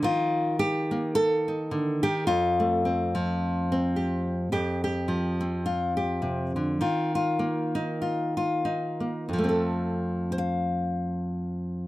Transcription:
0.02 D#3 F4
0.59 G4
0.91 A#3
1.15 A4
1.48 D#4
1.71 D3
2.03 D#3 G4
2.27 F2 F4
2.60 A3
2.85 C4
3.15 F3
3.72 C4
3.96 G4
4.52 F2 G4
4.84 G4
5.08 F3
5.41 C4
5.66 F4
5.97 G4
6.22 C3
6.56 D3
6.81 D#3 F4
7.15 F4
7.39 A#3
7.75 D#4
8.02 F4
8.37 F4
8.65 D#4
9.00 A#3
9.29 F2
9.33 F3
9.38 A3
9.44 C4
9.49 A4
10.32 C5
10.38 F5

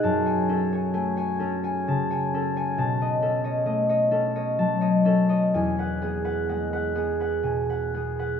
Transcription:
Already playing: F#3 G#3 G#4 F#5 G#5
0.03 F#2 A5
0.26 C#5 G#5
0.49 C#4 A4
0.72 C#5 G#5
0.94 A3 G#5
1.17 C#5 G#5
1.39 C#4 A4
1.63 C#5 G#5
1.88 C#3 A5
2.10 C#5 G#5
2.34 C#4 A4
2.56 C#5 G#5
2.78 B2 A5
3.01 C#5 D#5
3.22 C#4 A4
3.44 C#5 D#5
3.65 A3 D#5
3.89 C#5 D#5
4.11 C#4 A4
4.36 C#5 D#5
4.58 F#3 A5
4.81 C#5 D#5
5.05 C#4 A4
5.29 C#5 D#5
5.54 E2 G#5
5.78 B4 F#5
6.02 B3 G#4
6.25 B4 F#5
6.49 G#3 F#5
6.73 B4 F#5
6.95 B3 G#4
7.20 B4 F#5
7.43 B2 G#5
7.70 B4 F#5
7.94 B3 G#4
8.19 B4 F#5

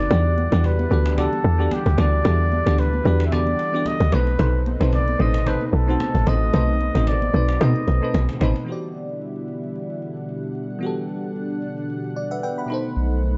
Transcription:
Already playing: B2 A3 C4 D#4 F#4 B4 D5 F#5
0.09 E2 D3 E3 G3 B3 D4 E4 F#4 G4 D5, cajon bass, low conga
0.25 cajon slap
0.37 cajon slap, high conga
0.51 E2 E3 B3 D4 F#4 G4 D5, cajon slap
0.64 B4, cajon bass
0.79 high conga
0.90 D2 E3 B3 D4 F#4 G4 A4 D5, low conga
1.06 cajon slap
1.16 E3 B3 D4 F#4 G4 A4 D5, cajon bass
1.33 cajon slap, high conga
1.44 E2, cajon slap
1.58 E3 B3 D4 F#4 G4 D5, cajon slap
1.71 G4, cajon bass, cajon slap, high conga
1.86 D2, cajon bass
1.97 D2 E3 B3 D4 F#4 G4 A4 D5, cajon slap, high conga, low conga
2.13 cajon slap
2.23 E2 E3 B3 D4 F#4 G4 A4 D5, cajon bass, low conga
2.40 cajon slap
2.52 cajon slap, high conga
2.65 D2 E3 B3 D4 F#4 G4 A4 D5, cajon slap
2.78 B4, cajon bass
2.93 cajon slap, high conga
3.04 E2 E3 B3 D4 F#4 G4 D5, low conga
3.20 cajon slap
3.27 E3 E5
3.31 B3 D4 F#4 G4 A4 D5, cajon bass
3.47 cajon slap, high conga
3.59 cajon slap
3.72 E3 B3 D4 F#4 G4 D5, cajon slap
3.86 D#5, cajon bass, cajon slap, high conga
4.00 D2, cajon bass
4.11 B1 B2 A3 C4 D#4 A4 B4 C5, cajon slap, high conga, low conga
4.27 cajon slap
4.39 B1 D#4 A4 C5, cajon bass, low conga
4.54 cajon slap
4.66 cajon slap, high conga
4.79 B1 B2 A3 C4 D#4 A4 B4 C5, cajon slap
4.93 D5, cajon bass
5.07 cajon slap, high conga
5.18 A1 B2 A3 C4 D#4 A4 C5 D#5, low conga
5.34 cajon slap
5.45 B2 A3 C4 D#4 A4 B4 C5, cajon bass
5.61 cajon slap, high conga
5.68 B4
5.73 B1 A4, cajon slap
5.86 B2 A3 C4 D#4 F#4 A4 C5, cajon slap
6.00 cajon bass, cajon slap, high conga
6.15 A1, cajon bass
6.25 A1 B2 A3 C4 D#4 A4 C5 D#5, cajon slap, high conga, low conga
6.42 cajon slap
6.52 B1 B2 A3 C4 D#4 A4 B4 C5, cajon bass, low conga
6.68 cajon slap
6.81 high conga
6.93 A1 B2 A3 C4 D#4 F#4 A4 C5, cajon bass, cajon slap
7.07 D5, cajon bass, cajon slap
7.22 cajon slap, high conga
7.32 B1 B2 A3 C4 D#4 A4 B4 C5, low conga
7.49 cajon slap
7.59 B2 A3 C4 D#4 A4 B4 C5 D#5, cajon bass
7.76 cajon slap, high conga
7.88 B1, cajon slap
8.01 B2 A3 C4 D#4 A4 B4 C5, cajon slap
8.14 B1, cajon bass, cajon slap, high conga
8.29 cajon bass, cajon slap
8.39 A1 B2 A3 C4 D#4 A4 B4 C5, cajon slap, high conga, low conga
8.56 cajon slap
8.65 B2 D3 E3 G3 B3 E4 F#4 F#5, cajon slap
8.70 G4 D5
8.83 cajon slap
8.95 cajon slap
9.09 cajon slap
9.22 cajon slap
9.36 cajon slap
9.48 cajon slap
9.64 cajon slap
9.76 cajon slap
9.90 cajon slap
10.02 cajon slap
10.17 cajon slap
10.29 cajon slap
10.43 cajon slap
10.55 cajon slap
10.70 cajon slap
10.79 E3 B3 D4 F#4, cajon slap
10.84 G4 A4
10.97 cajon slap
11.09 cajon slap
11.23 cajon slap
11.36 cajon slap
11.50 cajon slap
11.62 cajon slap
11.78 cajon slap
11.90 cajon slap
12.04 cajon slap
12.16 D5, cajon slap
12.31 B4 E5 F#5, cajon slap
12.43 B4 F#5 G5, cajon slap
12.57 F#5 B5, cajon slap
12.66 B2 D#3 A3 B3 D#4 B5, cajon slap
12.72 A4 C5
12.84 cajon slap
12.96 B1, cajon slap
13.11 cajon slap
13.23 cajon slap

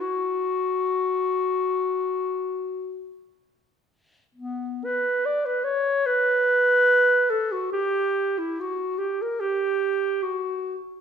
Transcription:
0.01 F#4
4.35 B3
4.85 B4
5.25 D5
5.46 B4
5.64 C#5
6.06 B4
7.30 A4
7.52 F#4
7.72 G4
8.38 E4
8.60 F#4
8.98 G4
9.22 A#4
9.40 G4
10.22 F#4

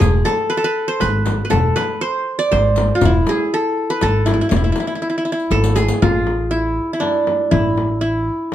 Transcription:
Already playing: C5
0.00 E1 G#4, riq, frame drum
0.25 A4, riq, frame drum
0.50 B4
0.57 A4
0.64 B4
0.88 C5
1.00 G#1 B4, riq, frame drum
1.26 riq, frame drum
1.45 B4
1.50 E1 A4, riq, frame drum
1.76 B4, riq, frame drum
2.01 C5
2.39 D5
2.51 G#1 C5, riq, frame drum
2.76 riq, frame drum
2.95 F4
3.01 E1, riq, frame drum
3.05 E4
3.27 G#4, riq, frame drum
3.54 A4
3.90 B4
4.01 G#1 A4, riq, frame drum
4.26 E4, riq, frame drum
4.34 E4
4.41 E4
4.49 E1 E4, riq, frame drum
4.56 E4
4.64 E4
4.72 E4, riq, frame drum
4.80 E4
4.87 E4
4.95 E4
5.02 E4
5.10 E4
5.18 E4
5.25 E4
5.32 E4
5.40 riq
5.51 G#1 A4, riq, frame drum
5.64 riq
5.76 G#4, riq, frame drum
5.88 riq
6.02 A1 F4, frame drum
6.27 frame drum
6.51 E4
6.93 E4
7.00 D4, frame drum
7.27 frame drum
7.51 A1 E4, frame drum
7.77 frame drum
8.01 E4

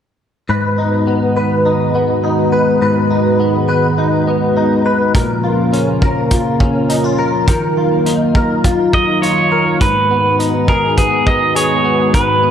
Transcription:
0.49 G#2 D#3 G#3 B3 F#4 B4
0.78 D#4
1.07 B3
1.37 B4
1.65 D#4
1.95 B3
2.24 D#4
2.52 B4
2.81 G#2 B4
3.10 D#4
3.40 B3
3.69 B4
3.98 D#4
4.27 B3
4.57 D#4
4.86 B4
5.14 A#2 C#3 F3 A#3 F4 A#4, kick, closed hi-hat
5.44 F4
5.72 C#4, closed hi-hat
6.02 A#4, kick
6.31 F4, kick, closed hi-hat
6.60 C#4, kick
6.89 D#4, closed hi-hat
7.04 F4
7.19 A#4
7.48 D#3 F#3 F4 A#4, kick, closed hi-hat
7.77 F4
8.06 D#4, closed hi-hat
8.35 A#4, kick
8.64 F4, kick, closed hi-hat
8.93 D#4 D#5, kick
9.22 F4 C#5, closed hi-hat
9.52 A#4
9.81 G#2 D#3 G#3 B3 F#4 B4, kick, closed hi-hat
10.10 B3
10.39 D#4, closed hi-hat
10.68 G#4 A#4, kick
10.97 B3 G#4, kick, closed hi-hat
11.26 D#4 D#5, kick
11.55 G#4 C#5, closed hi-hat
11.84 B3
12.14 G#2 B4, kick, closed hi-hat
12.43 B3

